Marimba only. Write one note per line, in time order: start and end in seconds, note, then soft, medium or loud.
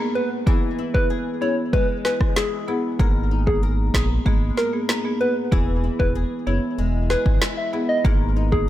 0.00 0.11 A#3 medium
0.00 0.12 B3 medium
0.00 0.12 G#4 medium
0.47 0.90 B3 medium
0.47 0.91 E4 medium
0.47 0.91 G#4 medium
0.94 1.06 B3 medium
0.94 1.06 E4 medium
0.94 1.07 G#4 medium
1.41 1.54 B3 medium
1.41 1.54 E4 medium
1.41 1.54 G#4 medium
2.68 2.80 B3 medium
2.68 2.80 E4 medium
2.68 2.80 G#4 medium
2.99 3.43 A#3 medium
2.99 3.43 B3 medium
2.99 3.43 G#4 medium
3.47 3.59 A#3 medium
3.47 3.59 B3 medium
3.47 3.59 G#4 medium
3.94 4.06 A#3 medium
3.94 4.06 B3 medium
3.94 4.07 G#4 medium
4.26 4.38 A#3 medium
4.26 4.38 B3 medium
4.26 4.38 G#4 loud
4.73 4.85 A#3 medium
4.73 4.85 B3 medium
4.73 4.85 G#4 medium
5.04 5.17 A#3 medium
5.04 5.17 B3 medium
5.04 5.17 G#4 medium
5.52 5.95 B3 medium
5.52 5.96 E4 medium
5.52 5.96 G#4 loud
5.99 6.11 B3 medium
5.99 6.12 E4 medium
5.99 6.12 G#4 medium
6.47 6.59 B3 medium
6.47 6.59 E4 medium
6.47 6.59 G#4 medium
7.73 7.85 B3 medium
7.73 7.85 E4 medium
7.73 7.85 G#4 medium
8.04 8.48 A#3 medium
8.04 8.48 B3 medium
8.04 8.48 G#4 loud
8.52 8.64 A#3 medium
8.52 8.64 B3 medium
8.52 8.64 G#4 medium